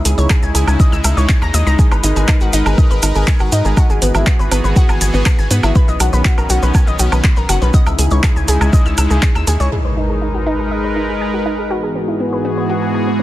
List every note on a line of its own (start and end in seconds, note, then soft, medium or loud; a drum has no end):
0.00 1.77 C#3 medium
0.00 3.73 G#3 medium
0.00 3.73 D#4 medium
0.00 1.77 E4 loud
0.05 0.15 C#2 loud
0.05 0.09 G#4 medium
0.05 open hi-hat loud
0.05 maracas medium
0.18 0.27 C#2 medium
0.18 0.27 C#5 medium
0.18 maracas soft
0.30 0.37 G#4 medium
0.30 kick loud
0.30 clap loud
0.30 low woodblock medium
0.30 maracas medium
0.43 0.52 C#2 medium
0.43 0.49 G#5 medium
0.43 maracas soft
0.55 0.65 C#2 loud
0.55 0.61 G#4 loud
0.55 open hi-hat loud
0.55 maracas medium
0.67 0.77 C#2 medium
0.67 0.74 G#5 medium
0.67 low woodblock medium
0.67 maracas soft
0.80 0.84 D#5 loud
0.80 kick loud
0.80 maracas medium
0.92 1.02 C#2 medium
0.92 0.99 E6 medium
0.92 maracas soft
1.04 1.14 C#2 loud
1.04 1.11 E5 medium
1.04 open hi-hat loud
1.04 low woodblock medium
1.04 maracas loud
1.17 1.26 C#2 loud
1.17 1.23 C#5 medium
1.17 maracas soft
1.29 1.36 G#5 medium
1.29 kick loud
1.29 clap loud
1.29 maracas soft
1.42 1.51 D#2 medium
1.42 1.46 A#5 loud
1.42 low woodblock soft
1.42 maracas soft
1.54 1.64 D#2 loud
1.54 1.64 D#5 loud
1.54 open hi-hat loud
1.54 maracas medium
1.67 1.76 C#2 medium
1.67 1.73 A#5 loud
1.67 maracas soft
1.79 1.89 G#4 medium
1.79 3.75 A#4 medium
1.79 3.75 B4 loud
1.79 kick loud
1.79 maracas medium
1.91 2.01 G#1 medium
1.91 1.98 B4 medium
1.91 low woodblock medium
1.91 maracas soft
2.03 2.13 G#1 loud
2.03 2.08 D#4 medium
2.03 open hi-hat loud
2.03 maracas loud
2.16 2.25 G#1 medium
2.16 2.23 G#4 medium
2.16 maracas soft
2.28 2.35 D#4 medium
2.28 kick loud
2.28 clap loud
2.28 low woodblock medium
2.28 maracas medium
2.41 2.50 G#1 medium
2.41 2.45 F#4 medium
2.41 maracas soft
2.53 2.63 G#1 loud
2.53 2.60 D#4 loud
2.53 open hi-hat loud
2.53 maracas medium
2.66 2.75 G#1 loud
2.66 2.70 G#4 medium
2.66 low woodblock medium
2.66 maracas soft
2.78 2.88 D#5 medium
2.78 kick loud
2.78 maracas soft
2.91 3.00 G#1 medium
2.91 2.97 B4 medium
2.91 maracas soft
3.03 3.12 G#1 loud
3.03 3.07 D#4 medium
3.03 open hi-hat loud
3.03 low woodblock medium
3.03 maracas loud
3.15 3.25 G#1 medium
3.15 3.22 G#4 medium
3.15 maracas soft
3.27 3.34 G#5 medium
3.27 kick loud
3.27 clap loud
3.27 maracas medium
3.39 3.50 G#1 medium
3.39 3.44 F#4 medium
3.39 low woodblock medium
3.39 maracas soft
3.52 3.62 G#2 loud
3.52 3.59 D#4 loud
3.52 open hi-hat medium
3.52 maracas medium
3.65 3.74 G#1 loud
3.65 3.69 G#4 medium
3.65 maracas soft
3.77 5.73 E3 medium
3.77 5.73 B3 medium
3.77 5.73 F#4 medium
3.77 3.81 F#4 loud
3.77 5.73 G#4 loud
3.77 kick loud
3.77 low woodblock medium
3.77 maracas soft
3.90 3.99 G#1 medium
3.90 3.96 G#4 medium
3.90 maracas soft
4.02 4.12 G#1 loud
4.02 4.06 B3 medium
4.02 open hi-hat loud
4.02 maracas medium
4.15 4.24 G#1 medium
4.15 4.24 E4 medium
4.15 low woodblock medium
4.15 maracas soft
4.27 4.33 B3 medium
4.27 kick loud
4.27 clap loud
4.27 maracas soft
4.39 4.49 G#1 medium
4.39 4.46 B4 medium
4.39 maracas soft
4.51 4.61 G#1 loud
4.51 4.58 B3 loud
4.51 open hi-hat medium
4.51 low woodblock medium
4.51 maracas medium
4.64 4.73 G#1 loud
4.64 4.71 B4 medium
4.64 maracas soft
4.76 4.80 F#4 loud
4.76 kick loud
4.76 maracas soft
4.89 4.98 G#1 medium
4.89 4.95 G#5 medium
4.89 low woodblock medium
4.89 maracas soft
5.01 5.11 G#1 loud
5.01 5.11 G#5 medium
5.01 open hi-hat loud
5.01 maracas loud
5.14 5.23 G#1 loud
5.14 5.20 B3 medium
5.14 maracas soft
5.26 kick loud
5.26 clap loud
5.26 low woodblock medium
5.26 maracas soft
5.39 5.48 G#1 medium
5.39 5.48 G#5 loud
5.39 maracas soft
5.51 5.60 G#2 loud
5.51 5.57 B3 loud
5.51 open hi-hat medium
5.51 maracas medium
5.63 5.73 G#1 loud
5.63 5.73 E4 loud
5.63 low woodblock medium
5.63 maracas soft
5.75 7.72 D#3 medium
5.75 7.72 B3 medium
5.75 7.72 C#4 loud
5.75 5.85 B4 medium
5.75 kick loud
5.75 maracas soft
5.88 5.97 B1 medium
5.88 5.94 D#5 medium
5.88 maracas soft
6.00 6.10 B1 loud
6.00 6.04 F#4 medium
6.00 open hi-hat loud
6.00 low woodblock medium
6.00 maracas medium
6.13 6.22 B1 medium
6.13 6.19 B4 medium
6.13 maracas soft
6.25 6.32 F#4 medium
6.25 kick loud
6.25 clap loud
6.25 maracas soft
6.38 6.47 B1 medium
6.38 6.42 A#4 medium
6.38 low woodblock medium
6.38 maracas soft
6.50 6.60 B1 loud
6.50 6.56 F#4 loud
6.50 open hi-hat medium
6.50 maracas medium
6.63 6.72 B1 loud
6.63 6.66 B4 medium
6.63 maracas soft
6.74 6.85 G#5 medium
6.74 kick loud
6.74 low woodblock medium
6.74 maracas medium
6.87 6.97 B1 medium
6.87 6.94 D#5 medium
6.87 maracas soft
6.99 7.09 B1 loud
6.99 7.03 F#4 medium
6.99 open hi-hat loud
6.99 maracas medium
7.12 7.21 B1 loud
7.12 7.18 B4 medium
7.12 low woodblock medium
7.12 maracas soft
7.24 7.31 B5 medium
7.24 kick loud
7.24 clap loud
7.24 maracas soft
7.36 7.46 B1 medium
7.36 7.41 A#4 medium
7.36 maracas soft
7.49 7.59 F#1 loud
7.49 7.56 F#4 loud
7.49 open hi-hat medium
7.49 low woodblock medium
7.49 maracas medium
7.62 7.71 B1 loud
7.62 7.66 B4 medium
7.62 maracas soft
7.74 9.70 C#3 medium
7.74 9.70 G#3 medium
7.74 9.70 D#4 medium
7.74 9.70 E4 loud
7.74 7.78 D#5 loud
7.74 kick loud
7.74 maracas medium
7.86 7.96 C#2 medium
7.86 7.93 E5 medium
7.86 low woodblock medium
7.86 maracas soft
7.99 8.08 C#2 loud
7.99 8.03 G#4 medium
7.99 open hi-hat loud
7.99 maracas medium
8.11 8.21 C#2 medium
8.11 8.21 C#5 medium
8.11 maracas soft
8.23 8.30 G#4 medium
8.23 kick loud
8.23 clap loud
8.23 low woodblock medium
8.23 maracas medium
8.36 8.45 C#2 medium
8.36 8.42 G#5 medium
8.36 maracas soft
8.48 8.58 C#2 loud
8.48 8.55 G#4 loud
8.48 open hi-hat loud
8.48 maracas medium
8.61 8.70 C#2 loud
8.61 8.67 G#5 medium
8.61 low woodblock medium
8.61 maracas soft
8.73 8.77 D#5 loud
8.73 kick loud
8.73 maracas medium
8.86 8.95 C#2 medium
8.86 8.92 E6 medium
8.86 maracas soft
8.98 9.08 C#2 loud
8.98 9.08 E6 medium
8.98 open hi-hat loud
8.98 low woodblock medium
8.98 maracas medium
9.10 9.20 C#2 loud
9.10 9.17 G#4 medium
9.10 maracas soft
9.22 kick loud
9.22 clap loud
9.22 maracas soft
9.35 9.45 D#2 medium
9.35 9.45 E6 loud
9.35 low woodblock medium
9.35 maracas soft
9.47 9.57 D#2 loud
9.47 9.54 G#4 loud
9.47 open hi-hat medium
9.47 maracas loud
9.60 9.69 C#2 loud
9.60 9.70 C#5 loud
9.60 maracas soft
9.72 11.68 G#3 medium
9.72 11.69 D#4 medium
9.72 12.50 G#4 medium
9.72 9.82 G#4 medium
9.72 11.69 A#4 medium
9.72 11.68 B4 medium
9.72 impact medium
9.78 12.48 D#5 medium
9.85 9.91 B4 medium
9.97 10.01 D#4 medium
10.10 10.16 G#4 medium
10.22 10.28 D#4 medium
10.34 10.38 F#4 medium
10.46 10.53 D#4 loud
10.59 10.63 G#4 medium
10.71 10.81 D#5 medium
10.84 10.90 B4 medium
10.96 11.00 D#4 medium
11.09 11.15 G#4 medium
11.21 11.28 G#5 medium
11.34 11.37 F#4 medium
11.46 11.52 D#4 medium
11.58 11.62 G#4 medium
11.70 13.23 G#2 medium
11.70 13.23 E3 medium
11.70 13.23 G#3 medium
11.70 13.23 B3 medium
11.70 11.74 F#4 medium
11.70 13.23 F#4 medium
11.70 13.23 G#4 medium
11.80 13.23 E4 medium
11.80 11.89 G#4 medium
11.95 11.99 B3 medium
12.03 13.23 B4 medium
12.03 13.23 F#5 medium
12.08 12.17 E4 medium
12.13 13.23 G#5 medium
12.20 12.27 B3 medium
12.33 12.39 B4 medium
12.45 12.51 B3 loud
12.57 12.64 B4 medium
12.70 12.74 F#4 medium
12.82 12.89 G#5 medium
12.94 13.04 G#5 medium
13.07 13.13 B3 medium
13.19 13.23 B3 medium